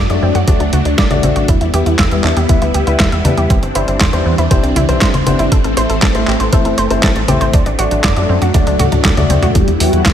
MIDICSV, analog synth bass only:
0, 0, Header, 1, 2, 480
1, 0, Start_track
1, 0, Key_signature, 1, "minor"
1, 0, Tempo, 504202
1, 1414, Time_signature, 4, 2, 24, 8
1, 9645, End_track
2, 0, Start_track
2, 0, Title_t, "Analog synth bass"
2, 0, Program_c, 0, 38
2, 94, Note_on_c, 0, 42, 76
2, 188, Note_off_c, 0, 42, 0
2, 213, Note_on_c, 0, 42, 92
2, 307, Note_off_c, 0, 42, 0
2, 333, Note_on_c, 0, 42, 81
2, 427, Note_off_c, 0, 42, 0
2, 453, Note_on_c, 0, 38, 103
2, 547, Note_off_c, 0, 38, 0
2, 572, Note_on_c, 0, 38, 80
2, 667, Note_off_c, 0, 38, 0
2, 692, Note_on_c, 0, 38, 89
2, 787, Note_off_c, 0, 38, 0
2, 812, Note_on_c, 0, 38, 79
2, 906, Note_off_c, 0, 38, 0
2, 933, Note_on_c, 0, 33, 98
2, 1027, Note_off_c, 0, 33, 0
2, 1052, Note_on_c, 0, 33, 79
2, 1146, Note_off_c, 0, 33, 0
2, 1172, Note_on_c, 0, 33, 98
2, 1267, Note_off_c, 0, 33, 0
2, 1292, Note_on_c, 0, 33, 84
2, 1387, Note_off_c, 0, 33, 0
2, 1413, Note_on_c, 0, 40, 102
2, 1507, Note_off_c, 0, 40, 0
2, 1532, Note_on_c, 0, 40, 73
2, 1627, Note_off_c, 0, 40, 0
2, 1652, Note_on_c, 0, 40, 92
2, 1746, Note_off_c, 0, 40, 0
2, 1772, Note_on_c, 0, 40, 79
2, 1867, Note_off_c, 0, 40, 0
2, 1893, Note_on_c, 0, 40, 104
2, 1987, Note_off_c, 0, 40, 0
2, 2013, Note_on_c, 0, 40, 73
2, 2107, Note_off_c, 0, 40, 0
2, 2132, Note_on_c, 0, 40, 89
2, 2227, Note_off_c, 0, 40, 0
2, 2252, Note_on_c, 0, 40, 83
2, 2346, Note_off_c, 0, 40, 0
2, 2373, Note_on_c, 0, 38, 102
2, 2467, Note_off_c, 0, 38, 0
2, 2493, Note_on_c, 0, 38, 79
2, 2587, Note_off_c, 0, 38, 0
2, 2613, Note_on_c, 0, 38, 86
2, 2707, Note_off_c, 0, 38, 0
2, 2732, Note_on_c, 0, 38, 77
2, 2827, Note_off_c, 0, 38, 0
2, 2853, Note_on_c, 0, 40, 98
2, 2947, Note_off_c, 0, 40, 0
2, 2972, Note_on_c, 0, 40, 76
2, 3066, Note_off_c, 0, 40, 0
2, 3092, Note_on_c, 0, 40, 95
2, 3187, Note_off_c, 0, 40, 0
2, 3213, Note_on_c, 0, 40, 81
2, 3307, Note_off_c, 0, 40, 0
2, 3333, Note_on_c, 0, 36, 105
2, 3427, Note_off_c, 0, 36, 0
2, 3452, Note_on_c, 0, 31, 76
2, 3547, Note_off_c, 0, 31, 0
2, 3572, Note_on_c, 0, 31, 97
2, 3667, Note_off_c, 0, 31, 0
2, 3692, Note_on_c, 0, 31, 78
2, 3786, Note_off_c, 0, 31, 0
2, 3813, Note_on_c, 0, 40, 101
2, 3907, Note_off_c, 0, 40, 0
2, 3932, Note_on_c, 0, 40, 71
2, 4027, Note_off_c, 0, 40, 0
2, 4052, Note_on_c, 0, 40, 92
2, 4147, Note_off_c, 0, 40, 0
2, 4172, Note_on_c, 0, 40, 85
2, 4267, Note_off_c, 0, 40, 0
2, 4293, Note_on_c, 0, 36, 99
2, 4387, Note_off_c, 0, 36, 0
2, 4412, Note_on_c, 0, 36, 81
2, 4506, Note_off_c, 0, 36, 0
2, 4532, Note_on_c, 0, 36, 92
2, 4626, Note_off_c, 0, 36, 0
2, 4651, Note_on_c, 0, 36, 82
2, 4746, Note_off_c, 0, 36, 0
2, 4773, Note_on_c, 0, 31, 98
2, 4867, Note_off_c, 0, 31, 0
2, 4892, Note_on_c, 0, 31, 79
2, 4986, Note_off_c, 0, 31, 0
2, 5013, Note_on_c, 0, 31, 97
2, 5107, Note_off_c, 0, 31, 0
2, 5133, Note_on_c, 0, 31, 80
2, 5227, Note_off_c, 0, 31, 0
2, 5254, Note_on_c, 0, 33, 103
2, 5347, Note_off_c, 0, 33, 0
2, 5373, Note_on_c, 0, 33, 79
2, 5467, Note_off_c, 0, 33, 0
2, 5493, Note_on_c, 0, 33, 97
2, 5587, Note_off_c, 0, 33, 0
2, 5613, Note_on_c, 0, 33, 79
2, 5707, Note_off_c, 0, 33, 0
2, 5733, Note_on_c, 0, 33, 105
2, 5827, Note_off_c, 0, 33, 0
2, 5853, Note_on_c, 0, 33, 77
2, 5947, Note_off_c, 0, 33, 0
2, 5973, Note_on_c, 0, 33, 94
2, 6067, Note_off_c, 0, 33, 0
2, 6092, Note_on_c, 0, 33, 84
2, 6187, Note_off_c, 0, 33, 0
2, 6214, Note_on_c, 0, 31, 100
2, 6307, Note_off_c, 0, 31, 0
2, 6332, Note_on_c, 0, 31, 79
2, 6427, Note_off_c, 0, 31, 0
2, 6453, Note_on_c, 0, 31, 87
2, 6547, Note_off_c, 0, 31, 0
2, 6574, Note_on_c, 0, 31, 84
2, 6667, Note_off_c, 0, 31, 0
2, 6694, Note_on_c, 0, 33, 101
2, 6787, Note_off_c, 0, 33, 0
2, 6814, Note_on_c, 0, 33, 81
2, 6907, Note_off_c, 0, 33, 0
2, 6934, Note_on_c, 0, 33, 93
2, 7027, Note_off_c, 0, 33, 0
2, 7054, Note_on_c, 0, 33, 84
2, 7147, Note_off_c, 0, 33, 0
2, 7174, Note_on_c, 0, 38, 99
2, 7267, Note_off_c, 0, 38, 0
2, 7294, Note_on_c, 0, 33, 79
2, 7387, Note_off_c, 0, 33, 0
2, 7414, Note_on_c, 0, 33, 92
2, 7508, Note_off_c, 0, 33, 0
2, 7534, Note_on_c, 0, 33, 76
2, 7627, Note_off_c, 0, 33, 0
2, 7653, Note_on_c, 0, 42, 99
2, 7747, Note_off_c, 0, 42, 0
2, 7774, Note_on_c, 0, 42, 75
2, 7868, Note_off_c, 0, 42, 0
2, 7894, Note_on_c, 0, 42, 97
2, 7988, Note_off_c, 0, 42, 0
2, 8014, Note_on_c, 0, 42, 83
2, 8107, Note_off_c, 0, 42, 0
2, 8134, Note_on_c, 0, 38, 101
2, 8227, Note_off_c, 0, 38, 0
2, 8253, Note_on_c, 0, 38, 80
2, 8347, Note_off_c, 0, 38, 0
2, 8373, Note_on_c, 0, 38, 87
2, 8467, Note_off_c, 0, 38, 0
2, 8494, Note_on_c, 0, 38, 81
2, 8587, Note_off_c, 0, 38, 0
2, 8614, Note_on_c, 0, 38, 103
2, 8707, Note_off_c, 0, 38, 0
2, 8733, Note_on_c, 0, 38, 79
2, 8827, Note_off_c, 0, 38, 0
2, 8853, Note_on_c, 0, 38, 96
2, 8947, Note_off_c, 0, 38, 0
2, 8973, Note_on_c, 0, 38, 81
2, 9067, Note_off_c, 0, 38, 0
2, 9093, Note_on_c, 0, 40, 102
2, 9187, Note_off_c, 0, 40, 0
2, 9214, Note_on_c, 0, 40, 73
2, 9307, Note_off_c, 0, 40, 0
2, 9334, Note_on_c, 0, 40, 95
2, 9427, Note_off_c, 0, 40, 0
2, 9454, Note_on_c, 0, 40, 80
2, 9547, Note_off_c, 0, 40, 0
2, 9574, Note_on_c, 0, 40, 103
2, 9645, Note_off_c, 0, 40, 0
2, 9645, End_track
0, 0, End_of_file